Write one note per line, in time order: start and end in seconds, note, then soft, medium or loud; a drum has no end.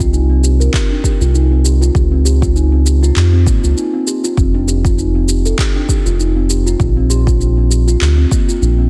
0.00 0.69 C2 loud
0.00 0.12 F4 loud
0.00 kick medium
0.00 shaker soft
0.13 0.29 D#4 medium
0.13 shaker soft
0.30 0.38 C4 medium
0.43 0.59 G4 medium
0.43 shaker medium
0.60 0.73 A#4 medium
0.60 shaker soft
0.73 0.90 G4 medium
0.73 kick loud
0.73 clap medium
0.73 shaker soft
0.90 1.03 D4 medium
1.04 1.20 G4 medium
1.04 kick medium
1.04 shaker medium
1.21 1.90 C2 medium
1.21 1.34 F4 medium
1.21 shaker soft
1.34 1.51 D#4 medium
1.34 shaker soft
1.51 1.59 C4 medium
1.65 1.74 G4 medium
1.65 shaker medium
1.81 1.94 F4 loud
1.81 shaker soft
1.95 3.11 C#2 medium
1.95 2.11 G4 medium
1.95 kick loud
1.95 shaker soft
2.12 2.24 C4 medium
2.25 2.41 G4 medium
2.25 shaker medium
2.42 2.55 F4 medium
2.42 kick loud
2.42 shaker soft
2.56 2.72 D#4 medium
2.56 shaker soft
2.72 2.80 C4 medium
2.86 2.95 G4 medium
2.86 shaker medium
3.03 3.15 F4 loud
3.03 shaker soft
3.16 3.48 F2 medium
3.16 3.32 G4 medium
3.16 clap medium
3.16 shaker soft
3.33 3.45 C4 medium
3.46 3.60 G#1 medium
3.46 3.56 A#3 medium
3.46 kick loud
3.46 shaker medium
3.64 3.74 C#2 medium
3.64 3.76 F4 medium
3.64 shaker soft
3.77 3.93 D#4 medium
3.77 shaker soft
3.94 4.01 C4 medium
4.07 4.17 G4 medium
4.07 shaker medium
4.24 4.36 F4 medium
4.24 shaker soft
4.37 5.54 F1 medium
4.37 4.47 C4 medium
4.37 kick loud
4.37 shaker soft
4.54 4.67 D4 loud
4.68 4.84 G4 medium
4.68 shaker medium
4.85 4.97 F4 loud
4.85 kick loud
4.85 shaker soft
4.98 5.14 D#4 medium
4.98 shaker soft
5.15 5.23 C4 medium
5.28 5.44 G4 medium
5.28 shaker medium
5.46 5.58 A4 medium
5.46 shaker soft
5.58 5.75 G4 medium
5.58 kick loud
5.58 clap medium
5.58 shaker soft
5.76 5.88 D4 medium
5.89 6.05 G4 medium
5.89 kick medium
5.89 shaker medium
6.06 6.75 F1 medium
6.06 6.19 F4 medium
6.06 shaker soft
6.19 6.35 D#4 medium
6.19 shaker soft
6.36 6.44 C4 medium
6.50 6.59 G4 medium
6.50 shaker medium
6.66 6.78 F4 medium
6.66 shaker soft
6.80 7.96 A#1 medium
6.80 6.96 G4 medium
6.80 kick loud
6.80 shaker soft
6.97 7.09 C4 medium
7.10 7.25 G4 medium
7.10 shaker medium
7.27 7.40 F4 loud
7.27 kick medium
7.27 shaker soft
7.40 7.57 D4 medium
7.40 shaker soft
7.57 7.65 C4 medium
7.70 7.80 G4 medium
7.70 shaker medium
7.88 8.00 F4 loud
7.88 shaker soft
8.01 8.25 D2 medium
8.01 8.17 G4 medium
8.01 clap medium
8.01 shaker soft
8.18 8.30 C4 medium
8.31 8.41 A#3 medium
8.31 kick loud
8.31 shaker medium
8.48 8.61 F4 medium
8.48 shaker soft
8.62 8.90 A#1 medium
8.62 8.78 D4 medium
8.62 shaker soft
8.79 8.86 C4 medium